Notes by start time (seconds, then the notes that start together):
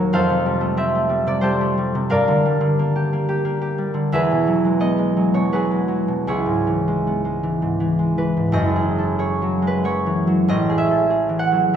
Already playing: D#2 A#2 F#3 A#3 C#4 D#4 F#4 A#4 C#5 D#5 F#5 A#5
0.13 F2 A4 C5 F5
0.30 C3
0.46 G3
0.61 A3
0.77 C4 E5
0.95 A3
1.09 G3
1.27 C3 D5
1.41 G3 G4 A4 C5
1.61 A3
1.78 G3
1.95 C3
2.10 G2 A#4 D5 F5
2.28 D3
2.46 G3
2.61 D3
2.79 A#3
2.96 G4
3.13 A#3
3.29 G4
3.45 A#3
3.62 G4
3.78 G3
3.94 D3
4.12 E2 G#4 B4 E5
4.31 B2
4.47 F#3
4.65 G#3
4.80 B3 D#5
4.98 G#3
5.17 F#3
5.34 B2 C#5
5.52 F#3 F#4 G#4 B4
5.71 G#3
5.88 F#3
6.08 B2
6.27 C#2 E4 G#4 C#5
6.46 G#2
6.67 E3
6.88 G#3
7.07 B3
7.25 G#3
7.43 E3
7.62 G#2
7.80 E3
7.99 G#3
8.18 E3 B4
8.37 G#2
8.52 F#1 F#2 D#5
8.76 G#4
8.98 A4
9.19 G#4 C#5
9.42 F#3
9.62 G#3
9.67 B4
9.84 F#3 C#5
10.06 E3
10.27 F#3
10.48 A1 A2 D#5
10.70 G#4
10.78 E5
10.91 A4
11.10 G#4
11.29 E3
11.39 F#5
11.52 F#3